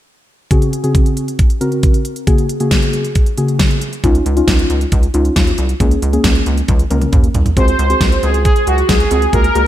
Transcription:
0.51 0.69 C#3 medium
0.51 0.69 C4 medium
0.51 0.69 F#4 medium
0.51 0.69 G#4 medium
0.51 kick loud
0.51 closed hi-hat medium
0.62 closed hi-hat soft
0.73 closed hi-hat medium
0.84 1.27 C#3 medium
0.84 1.27 C4 medium
0.84 1.27 F#4 medium
0.84 1.27 G#4 medium
0.84 closed hi-hat soft
0.95 kick loud
0.95 closed hi-hat medium
1.06 closed hi-hat soft
1.17 closed hi-hat medium
1.28 closed hi-hat soft
1.39 kick loud
1.39 closed hi-hat medium
1.50 closed hi-hat soft
1.61 1.98 C#3 medium
1.61 1.98 C4 medium
1.61 1.98 F#4 medium
1.61 1.98 A#4 medium
1.61 closed hi-hat medium
1.72 closed hi-hat soft
1.83 kick loud
1.83 closed hi-hat medium
1.94 closed hi-hat soft
2.05 closed hi-hat medium
2.16 closed hi-hat soft
2.27 2.46 C#3 medium
2.27 2.46 A#3 medium
2.27 2.46 F#4 medium
2.27 2.46 G#4 medium
2.27 kick loud
2.27 closed hi-hat medium
2.38 closed hi-hat soft
2.49 closed hi-hat medium
2.60 3.04 C#3 medium
2.60 3.04 A#3 medium
2.60 3.04 F#4 medium
2.60 3.04 G#4 medium
2.60 closed hi-hat soft
2.71 kick loud
2.71 snare loud
2.71 closed hi-hat medium
2.82 closed hi-hat soft
2.93 closed hi-hat medium
3.05 closed hi-hat soft
3.15 kick loud
3.15 closed hi-hat medium
3.26 closed hi-hat soft
3.38 3.75 C#3 medium
3.38 3.75 A#3 medium
3.38 3.75 F#4 medium
3.38 3.75 G#4 medium
3.38 closed hi-hat medium
3.48 closed hi-hat soft
3.59 kick loud
3.59 snare loud
3.59 closed hi-hat medium
3.71 closed hi-hat soft
3.81 closed hi-hat medium
3.93 closed hi-hat soft
4.04 4.19 C#2 loud
4.04 4.22 C#4 medium
4.04 4.22 D#4 medium
4.04 4.22 F4 medium
4.04 kick loud
4.04 closed hi-hat medium
4.15 closed hi-hat soft
4.26 4.41 C#2 loud
4.26 closed hi-hat medium
4.37 4.80 C#4 medium
4.37 4.80 D#4 medium
4.37 4.80 F4 medium
4.37 closed hi-hat soft
4.48 4.63 C#2 loud
4.48 kick loud
4.48 snare loud
4.48 closed hi-hat medium
4.59 closed hi-hat soft
4.70 4.85 C#2 loud
4.70 closed hi-hat medium
4.81 closed hi-hat soft
4.92 5.08 C#2 loud
4.92 kick loud
4.92 closed hi-hat medium
5.03 closed hi-hat soft
5.14 5.29 C#2 loud
5.14 5.51 C#4 medium
5.14 5.51 D#4 medium
5.14 5.51 F4 medium
5.14 closed hi-hat medium
5.25 closed hi-hat soft
5.36 5.52 D#2 medium
5.36 kick loud
5.36 snare loud
5.36 closed hi-hat medium
5.47 closed hi-hat soft
5.58 5.74 C2 medium
5.58 closed hi-hat medium
5.69 closed hi-hat soft
5.80 5.96 C#2 loud
5.80 5.99 A#3 medium
5.80 5.99 C#4 medium
5.80 5.99 G#4 medium
5.80 kick loud
5.80 closed hi-hat medium
5.91 closed hi-hat soft
6.02 6.18 C#2 loud
6.02 closed hi-hat medium
6.13 6.56 A#3 medium
6.13 6.57 C#4 medium
6.13 6.56 G#4 medium
6.13 closed hi-hat soft
6.24 6.40 C#2 loud
6.24 kick loud
6.24 snare loud
6.24 closed hi-hat medium
6.35 closed hi-hat soft
6.46 6.62 C#2 loud
6.46 closed hi-hat medium
6.58 closed hi-hat soft
6.68 6.84 C#2 loud
6.68 kick loud
6.68 closed hi-hat medium
6.68 high tom medium
6.79 closed hi-hat medium
6.90 7.06 C#2 medium
6.90 7.27 A#3 medium
6.90 7.27 C#4 medium
6.90 7.27 A#4 medium
6.90 closed hi-hat medium
6.90 mid tom medium
7.01 closed hi-hat soft
7.01 mid tom medium
7.13 7.28 D#2 medium
7.13 kick loud
7.13 closed hi-hat medium
7.13 mid tom medium
7.24 closed hi-hat soft
7.34 7.50 C2 medium
7.34 closed hi-hat medium
7.34 floor tom medium
7.46 closed hi-hat soft
7.46 floor tom medium
7.56 7.72 C#2 loud
7.56 7.75 C4 medium
7.56 7.75 F#4 medium
7.56 7.75 G#4 medium
7.56 8.25 C5 loud
7.56 kick loud
7.56 closed hi-hat medium
7.68 closed hi-hat soft
7.79 7.94 C#2 loud
7.79 closed hi-hat medium
7.90 8.39 C4 medium
7.90 8.39 F#4 medium
7.90 8.39 G#4 medium
7.90 closed hi-hat soft
8.01 8.16 C#2 loud
8.01 kick loud
8.01 snare loud
8.01 closed hi-hat medium
8.12 closed hi-hat soft
8.22 8.46 C#2 loud
8.22 8.43 G#4 medium
8.22 closed hi-hat medium
8.34 closed hi-hat soft
8.45 8.67 G#4 medium
8.45 kick loud
8.45 closed hi-hat medium
8.56 closed hi-hat medium
8.67 8.82 C#2 medium
8.67 8.90 F#4 medium
8.67 closed hi-hat medium
8.78 closed hi-hat soft
8.89 9.05 C#2 loud
8.89 9.34 G#4 loud
8.89 kick loud
8.89 snare loud
8.89 closed hi-hat medium
9.00 closed hi-hat soft
9.11 9.26 C#2 loud
9.11 9.23 C4 medium
9.11 9.23 F#4 medium
9.11 9.23 G#4 medium
9.11 closed hi-hat medium
9.22 closed hi-hat soft
9.33 9.49 C#2 loud
9.33 9.45 A#3 medium
9.33 9.45 F#4 medium
9.33 9.45 G#4 medium
9.33 9.67 A#4 loud
9.33 kick loud
9.33 closed hi-hat medium
9.44 closed hi-hat soft
9.55 9.67 C#2 medium
9.55 9.61 A#3 medium
9.55 9.61 F#4 medium
9.55 9.61 G#4 medium
9.55 closed hi-hat medium

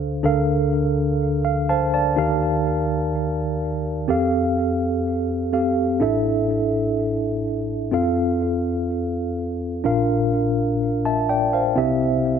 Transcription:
0.00 0.21 D2 medium
0.00 0.21 D3 medium
0.00 0.21 D4 medium
0.00 0.21 A4 medium
0.00 0.21 C5 medium
0.00 0.22 F5 medium
0.23 2.13 D2 medium
0.23 2.13 D3 medium
0.23 2.12 D4 medium
0.23 2.13 A4 medium
0.23 2.13 A#4 medium
0.23 1.43 F5 medium
1.45 1.67 F5 medium
1.69 1.92 C5 medium
1.69 1.92 F5 medium
1.69 1.93 A5 medium
1.94 2.39 D5 medium
1.94 2.39 A5 medium
2.16 4.05 D#2 medium
2.16 4.05 D#3 medium
2.16 4.05 D#4 medium
2.16 4.05 G4 medium
2.16 4.06 A#4 medium
2.16 4.06 F5 medium
4.08 5.97 F2 medium
4.08 5.50 C4 medium
4.08 5.50 G4 medium
4.08 5.50 A4 medium
4.08 5.51 F5 medium
5.53 6.01 C4 medium
5.53 6.01 G4 medium
5.53 6.00 A4 medium
5.53 6.01 F5 medium
6.00 7.89 A1 medium
6.00 7.89 A2 medium
6.00 7.89 D4 medium
6.00 7.89 E4 medium
6.00 7.89 A4 medium
6.00 7.90 E5 medium
7.91 9.81 F2 medium
7.91 9.80 C4 medium
7.91 9.81 F4 medium
7.91 9.81 A4 medium
7.91 9.82 F5 medium
9.84 11.73 A#1 medium
9.84 11.73 A#2 medium
9.84 11.02 D4 medium
9.84 11.02 F4 medium
9.84 11.03 A#4 medium
9.84 11.03 F5 medium
11.05 11.28 E5 medium
11.05 11.28 A5 medium
11.29 11.52 D5 medium
11.29 11.52 G5 medium
11.53 11.99 C5 medium
11.53 11.99 F5 medium
11.76 12.39 C2 medium
11.76 12.39 C3 medium
11.76 12.39 C4 medium
11.76 12.39 E4 medium
11.76 12.39 G4 medium
11.76 12.39 E5 medium

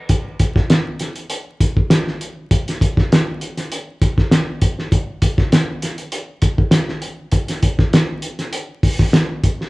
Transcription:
0.09 kick loud
0.09 closed hi-hat medium
0.39 kick medium
0.39 closed hi-hat medium
0.56 kick medium
0.56 snare soft
0.70 snare loud
0.70 closed hi-hat medium
0.99 snare soft
0.99 closed hi-hat medium
1.16 closed hi-hat soft
1.30 closed hi-hat medium
1.60 kick loud
1.60 closed hi-hat medium
1.77 kick medium
1.90 snare loud
1.90 closed hi-hat medium
2.07 snare soft
2.21 closed hi-hat medium
2.51 kick loud
2.51 closed hi-hat medium
2.68 snare soft
2.68 closed hi-hat medium
2.81 kick loud
2.81 closed hi-hat medium
2.97 kick loud
2.97 snare soft
3.12 snare loud
3.12 closed hi-hat medium
3.41 closed hi-hat medium
3.57 snare soft
3.57 closed hi-hat soft
3.72 closed hi-hat medium
4.02 kick medium
4.02 closed hi-hat medium
4.18 kick medium
4.18 snare soft
4.31 snare loud
4.31 closed hi-hat medium
4.62 kick medium
4.62 closed hi-hat medium
4.79 snare soft
4.92 kick loud
4.92 closed hi-hat medium
5.22 kick medium
5.22 closed hi-hat medium
5.38 kick loud
5.38 snare soft
5.52 snare loud
5.52 closed hi-hat medium
5.82 snare soft
5.82 closed hi-hat medium
5.98 closed hi-hat medium
6.12 closed hi-hat medium
6.42 kick medium
6.42 closed hi-hat medium
6.58 kick medium
6.71 snare loud
6.71 closed hi-hat medium
6.89 snare soft
7.02 closed hi-hat medium
7.32 kick medium
7.32 closed hi-hat medium
7.48 snare soft
7.48 closed hi-hat medium
7.63 kick medium
7.63 closed hi-hat medium
7.79 kick loud
7.79 snare soft
7.93 snare loud
7.93 closed hi-hat medium
8.22 closed hi-hat medium
8.39 snare soft
8.39 closed hi-hat soft
8.53 closed hi-hat medium
8.83 kick medium
8.83 open hi-hat medium
8.99 kick medium
8.99 snare soft
9.13 snare loud
9.13 closed hi-hat medium
9.44 kick medium
9.44 closed hi-hat medium
9.61 snare soft

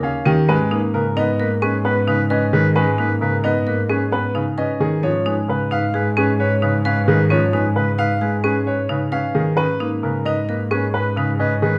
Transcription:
0.00 0.35 D#2 medium
0.00 0.32 C#4 medium
0.00 0.22 G4 medium
0.00 0.33 F5 medium
0.26 0.55 D#3 loud
0.26 0.47 C#4 medium
0.26 0.55 G4 medium
0.48 4.90 G#2 medium
0.48 0.78 G#3 medium
0.48 0.78 C#4 medium
0.48 0.64 B4 soft
0.48 0.78 B4 medium
0.71 1.01 A#3 medium
0.71 1.01 D#4 medium
0.71 0.87 B4 soft
0.94 1.23 C#3 medium
0.94 1.23 A#4 medium
0.94 1.10 B4 medium
1.16 1.46 B3 medium
1.16 1.46 D#4 medium
1.16 1.32 B4 medium
1.16 1.46 D#5 loud
1.39 1.69 A#3 medium
1.39 1.69 A#4 medium
1.39 1.55 B4 medium
1.62 1.92 C#4 medium
1.62 1.92 C#4 loud
1.62 1.92 G#4 medium
1.62 1.78 B4 medium
1.84 2.14 B3 medium
1.84 2.00 B4 medium
1.84 2.14 B4 medium
2.07 2.37 C#3 medium
2.07 2.37 D#4 medium
2.07 2.24 B4 medium
2.30 2.60 C#4 medium
2.30 2.46 B4 medium
2.30 2.60 B4 medium
2.30 2.60 D#5 medium
2.53 2.82 D#3 medium
2.53 2.83 G#4 medium
2.53 2.69 B4 medium
2.76 3.05 G#3 medium
2.76 3.05 C#4 medium
2.76 3.05 B4 medium
2.76 2.92 B4 medium
2.98 3.28 A#3 medium
2.98 3.28 D#4 medium
2.98 3.14 B4 medium
3.21 3.51 C#3 medium
3.21 3.51 A#4 medium
3.21 3.37 B4 medium
3.44 3.73 B3 medium
3.44 3.73 D#4 medium
3.44 3.60 B4 medium
3.44 3.74 D#5 medium
3.67 3.96 A#3 medium
3.67 3.96 A#4 medium
3.67 3.83 B4 medium
3.89 4.19 C#4 medium
3.89 4.19 G#4 medium
3.89 4.06 B4 medium
4.12 4.42 B3 medium
4.12 4.28 B4 medium
4.12 4.42 B4 medium
4.35 4.64 C#3 medium
4.35 4.64 D#4 medium
4.35 4.51 B4 soft
4.58 4.87 C#4 medium
4.58 4.87 B4 medium
4.58 4.74 B4 soft
4.58 4.87 D#5 medium
4.80 5.10 D#3 medium
4.80 5.10 G#4 medium
5.03 9.44 G#2 medium
5.03 5.33 F3 medium
5.03 5.33 C#4 medium
5.03 5.19 B4 soft
5.03 5.33 C#5 medium
5.26 5.55 G#3 medium
5.26 5.55 D#4 medium
5.26 5.42 B4 soft
5.48 5.78 C#3 medium
5.48 5.64 B4 medium
5.48 5.78 B4 medium
5.71 6.01 D#4 medium
5.71 5.87 B4 medium
5.71 6.01 F5 medium
5.94 6.24 G#3 medium
5.94 6.23 G#4 medium
5.94 6.10 B4 medium
6.17 6.46 C#4 loud
6.17 6.46 C#4 medium
6.17 6.46 G#4 medium
6.17 6.33 B4 medium
6.40 6.55 B4 medium
6.40 6.69 C#5 medium
6.62 6.92 C#3 medium
6.62 6.92 D#4 medium
6.62 6.78 B4 medium
6.85 7.14 C#4 medium
6.85 7.01 B4 medium
6.85 7.14 B4 medium
6.85 7.15 F5 medium
7.07 7.37 D#3 medium
7.07 7.37 G#4 medium
7.07 7.23 B4 medium
7.30 7.60 F3 medium
7.30 7.60 C#4 medium
7.30 7.46 B4 medium
7.30 7.60 C#5 medium
7.53 7.82 G#3 medium
7.53 7.83 D#4 medium
7.53 7.69 B4 medium
7.76 8.05 C#3 medium
7.76 8.05 B4 medium
7.76 7.92 B4 medium
7.98 8.28 D#4 medium
7.98 8.15 B4 medium
7.98 8.28 F5 loud
8.21 8.51 G#3 medium
8.21 8.51 G#4 medium
8.21 8.37 B4 medium
8.44 8.73 C#4 medium
8.44 8.73 G#4 medium
8.44 8.60 B4 medium
8.67 8.83 B4 medium
8.67 8.96 C#5 medium
8.89 9.19 C#3 medium
8.89 9.19 D#4 medium
8.89 9.05 B4 soft
9.12 9.42 C#4 medium
9.12 9.42 B4 medium
9.12 9.28 B4 soft
9.12 9.42 F5 medium
9.35 9.64 D#3 medium
9.35 9.64 G#4 medium
9.57 11.79 G#2 medium
9.57 9.87 C#4 medium
9.57 9.87 B4 medium
9.57 9.74 B4 soft
9.80 10.10 A#3 medium
9.80 10.10 D#4 medium
9.80 9.96 B4 soft
10.03 10.33 C#3 medium
10.03 10.33 A#4 medium
10.03 10.19 B4 soft
10.25 10.55 D#4 medium
10.25 10.42 B4 medium
10.25 10.55 D#5 medium
10.49 10.78 A#3 medium
10.49 10.78 A#4 medium
10.49 10.64 B4 medium
10.71 11.01 C#4 medium
10.71 11.01 G#4 medium
10.71 10.87 B4 medium
10.94 11.23 B4 medium
10.94 11.10 B4 medium
11.16 11.46 C#3 medium
11.16 11.46 D#4 medium
11.16 11.33 B4 medium
11.39 11.69 C#4 medium
11.39 11.55 B4 medium
11.39 11.69 D#5 medium
11.62 11.79 D#3 medium
11.62 11.79 G#4 medium
11.62 11.78 B4 medium

